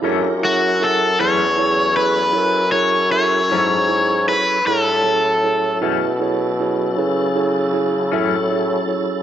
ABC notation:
X:1
M:12/8
L:1/8
Q:3/8=52
K:F#m
V:1 name="Overdriven electric guitar"
z F A c2 B2 c c3 B | A3 z8 z |]
V:2 name="Tine electric piano"
[EGAc] [EGAe] [EGAe] [EGAc] [EGAc] [EGAB] [EGAc] [EGAc] [EGAe] [EGAc] [EGAc] [EGAc] | [EGAc] [EGAc] [EGAc] [EGAe] [EGAc] [EGAc] [EGAB] [EGAc] [EGAc] [EGAe] [EGAc] [EGAc] |]
V:3 name="Tonewheel organ"
[D^E=G^A] [F,C=E=A]8- [F,CEA]3 | [=G,D^EA] [F,C=EA]8- [F,CEA]3 |]
V:4 name="Clean electric guitar" clef=bass
[F,,E,A,C] z2 [F,,E,A,C] z4 z [F,,E,A,C] z2 | z3 [F,,E,A,C] z4 z [F,,E,A,C] z2 |]
V:5 name="Bassoon" clef=bass
F,,3 E,,3 F,,3 G,,2 z | A,,3 B,,3 C,3 A,,2 z |]